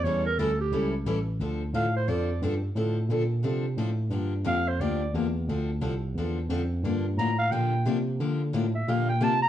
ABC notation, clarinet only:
X:1
M:4/4
L:1/8
Q:"Swing" 1/4=177
K:Dm
V:1 name="Clarinet"
^c B A G2 z3 | z2 f c d2 z2 | z8 | z2 f c d2 z2 |
z8 | z2 b f g2 z2 | z3 e f g a b |]